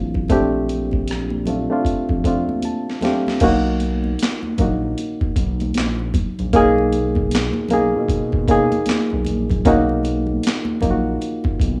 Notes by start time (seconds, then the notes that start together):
Already playing: A1 A3 C4 D4 E4 F4
0.14 kick, low conga
0.28 A#1 A3 C4 D4 G4, kick, closed hi-hat, muted conga
0.69 closed hi-hat, high conga
0.91 kick, high conga
1.08 cross-stick, closed hi-hat, muted conga
1.30 muted conga, high conga
1.46 A3 C4 D4 F4, closed hi-hat, low conga
1.70 A3 C4 D4 F4
1.85 F2, kick, closed hi-hat, muted conga
2.09 F2, kick, muted conga
2.24 A3 C4 D4 F4, kick, closed hi-hat
2.49 high conga
2.62 A5, closed hi-hat, muted conga, high conga
2.90 snare
3.01 A3 C4 D4 G4 F5, snare, closed hi-hat, high conga, low conga
3.27 snare, low conga
3.40 B1 A#3 C#4 D#4 F#4, kick, closed hi-hat, crash, muted conga
3.67 muted conga
3.80 closed hi-hat, high conga
4.04 high conga
4.19 snare, closed hi-hat, muted conga
4.24 clap
4.43 high conga
4.58 A#1 A#3 C#4 D#4 F#4, kick, closed hi-hat, low conga
4.98 closed hi-hat, muted conga
5.21 B1, kick, muted conga
5.36 B1, kick, closed hi-hat
5.60 closed hi-hat, high conga
5.74 A#1, snare, closed hi-hat, muted conga, high conga
5.79 clap
5.99 muted conga
6.14 kick, closed hi-hat, high conga, low conga
6.39 A#1, closed hi-hat, low conga
6.53 B1 A#3 C#4 D#4 G#4, kick, closed hi-hat
6.78 muted conga
6.92 closed hi-hat, high conga
7.15 kick, high conga
7.31 snare, closed hi-hat, muted conga
7.36 clap
7.53 muted conga, high conga
7.69 B1 A#3 C#4, closed hi-hat, low conga
7.73 D#4 G#4
7.95 B2
8.09 kick, closed hi-hat, muted conga
8.32 kick, muted conga
8.48 A#3 C#4 D#4 G#4, kick, closed hi-hat
8.72 closed hi-hat, high conga
8.86 snare, closed hi-hat, muted conga, high conga
8.90 clap
9.10 B1, muted conga
9.25 A#1, closed hi-hat, high conga, low conga
9.49 kick, closed hi-hat, low conga
9.65 B1 A#3 C#4 D#4 F#4, kick, closed hi-hat
9.89 muted conga
10.03 closed hi-hat, high conga
10.27 high conga
10.43 snare, closed hi-hat
10.48 clap
10.65 muted conga, high conga
10.81 A#1 A#3 C#4 D#4 F4, kick, closed hi-hat, low conga
10.91 F#4
11.21 closed hi-hat, muted conga
11.44 B1, kick, muted conga
11.60 B1, kick, closed hi-hat